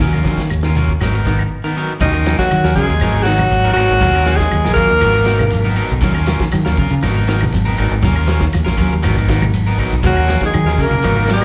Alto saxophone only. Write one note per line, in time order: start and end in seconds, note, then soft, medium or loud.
2.01 2.37 D#4 loud
2.38 2.74 F#4 medium
2.75 3.24 G#4 medium
3.22 3.73 F#4 loud
3.73 4.38 F#4 loud
4.36 4.73 G#4 loud
4.74 5.72 A#4 loud
10.06 10.40 F#4 loud
10.46 10.83 G#4 medium
10.82 11.30 A#4 medium
11.33 11.45 G#4 medium